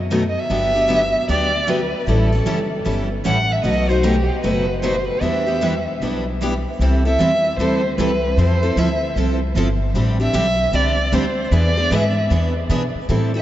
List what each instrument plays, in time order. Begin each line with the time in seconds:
Already playing: upright bass F#2
0.11 steel-string acoustic guitar B2 D#3 F#3 A3 B3 D#4 F#4 A4
0.29 violin D#5
0.39 violin E5
0.50 upright bass G1, steel-string acoustic guitar D3 F#3 B3 D4 G4
0.75 steel-string acoustic guitar B3 D4 G4
0.89 steel-string acoustic guitar D3 F#3 B3 D4 G4
1.28 upright bass D2, steel-string acoustic guitar D3 F#3 B3 D4 G4, violin D5
1.68 steel-string acoustic guitar D3 F#3 B3 D4 G4, violin B4
2.07 upright bass A1, steel-string acoustic guitar E3 G3 C#4 E4 A4, violin A4
2.33 steel-string acoustic guitar C#4 E4 A4
2.46 upright bass F#1, steel-string acoustic guitar E3 G3 C#4 E4 A4
2.85 upright bass G1, steel-string acoustic guitar E3 G3 C#4 E4 A4
3.25 upright bass A1, steel-string acoustic guitar E3 G3 C#4 E4 A4, violin F#5
3.52 violin E5
3.64 upright bass B1, steel-string acoustic guitar B2 F#3 A3 D#4 F#4 B4, violin D#5
3.89 steel-string acoustic guitar A3 D#4 F#4, violin C5
4.03 steel-string acoustic guitar B2 F#3 A3 D#4 F#4 B4, violin G4
4.42 upright bass F#1, steel-string acoustic guitar B2 F#3 A3 D#4 F#4 B4, violin B4
4.82 steel-string acoustic guitar B2 F#3 A3 D#4 F#4 B4, violin C5
5.07 violin B4
5.21 upright bass E2, steel-string acoustic guitar E3 G3 B3 D4 E4 G4 B4, violin E5
5.47 steel-string acoustic guitar B3 D4 G4
5.61 steel-string acoustic guitar E3 G3 B3 D4 E4 G4 B4
6.01 upright bass B1, steel-string acoustic guitar E3 G3 B3 D4 E4 G4 B4
6.41 steel-string acoustic guitar E3 G3 B3 D4 E4 G4 B4
6.79 upright bass C2, steel-string acoustic guitar E3 G3 C4 E4 A4
7.05 steel-string acoustic guitar C4 E4 A4, violin E5
7.18 upright bass E2, steel-string acoustic guitar E3 G3 C4 E4 A4
7.57 upright bass D2, steel-string acoustic guitar E3 G3 C4 E4 A4, violin C5
7.98 upright bass C2, steel-string acoustic guitar E3 G3 C4 E4 A4, violin B4
8.37 upright bass F2, steel-string acoustic guitar F3 C4 E4 A4, violin C5
8.63 steel-string acoustic guitar C4 E4 A4
8.76 upright bass D2, steel-string acoustic guitar F3 C4 E4 A4, violin E5
9.16 upright bass C2, steel-string acoustic guitar F3 C4 E4 A4
9.55 upright bass G1, steel-string acoustic guitar F3 C4 E4 A4
9.94 upright bass A1, steel-string acoustic guitar D3 G3 C4 D4 G4
10.20 steel-string acoustic guitar C4 D4 G4, violin E5
10.33 upright bass B1, steel-string acoustic guitar D3 G3 C4 D4 G4
10.73 upright bass C2, steel-string acoustic guitar D3 G3 C4 D4 G4, violin D5
11.12 upright bass D2, steel-string acoustic guitar D3 G3 C4 D4 G4, violin C5
11.51 upright bass E2, steel-string acoustic guitar E3 B3 D4 G#4 B4, violin D5
11.77 steel-string acoustic guitar B3 D4 G#4
11.91 upright bass G#2, steel-string acoustic guitar E3 B3 D4 G#4 B4
11.95 violin E5
12.30 upright bass E2, steel-string acoustic guitar E3 B3 D4 G#4 B4
12.69 upright bass B2, steel-string acoustic guitar E3 B3 D4 G#4 B4
12.95 muted upright bass stroke
13.09 upright bass A2, steel-string acoustic guitar E3 G3 C4 E4 A4
13.34 steel-string acoustic guitar C4 E4 A4, violin E5